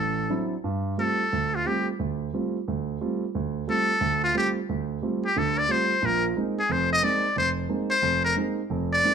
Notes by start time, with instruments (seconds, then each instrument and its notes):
Already playing: grand piano A1, muted trumpet A4
0.29 grand piano F#3 C4 D4 E4
0.64 grand piano G2
0.98 grand piano G3 A3 C4 F4, muted trumpet A4
1.33 grand piano D2
1.55 muted trumpet F4
1.65 grand piano G3 A3 C4 F4, muted trumpet G4
1.99 grand piano D2
2.33 grand piano G3 A3 C4 F4
2.68 grand piano D2
3.01 grand piano G3 A3 C4 F4
3.35 grand piano D2
3.67 grand piano G3 A3 C4 F4, muted trumpet A4
4.01 grand piano D2
4.24 muted trumpet F4
4.34 grand piano G3 A3 C4 F4, muted trumpet G4
4.69 grand piano D2
5.02 grand piano G3 A3 C4 F4
5.26 muted trumpet G4
5.36 grand piano D2 D3, muted trumpet A4
5.59 muted trumpet D5
5.69 grand piano G3 A3 C4 F4, muted trumpet C5
6.02 grand piano A#1 A#2, muted trumpet A#4
6.36 grand piano G#3 A#3 C4 D#4
6.60 muted trumpet G#4
6.69 grand piano F1, muted trumpet C5
6.93 muted trumpet D#5
7.02 grand piano G#3 A#3 C4 D#4, muted trumpet D5
7.36 grand piano F1, muted trumpet C5
7.69 grand piano G#3 A#3 C4 D#4
7.91 muted trumpet C5
8.02 grand piano F1
8.25 muted trumpet A#4
8.36 grand piano G#3 A#3 C4 D#4
8.70 grand piano F1
8.93 muted trumpet D5
9.04 grand piano G#3 A#3 C4 D#4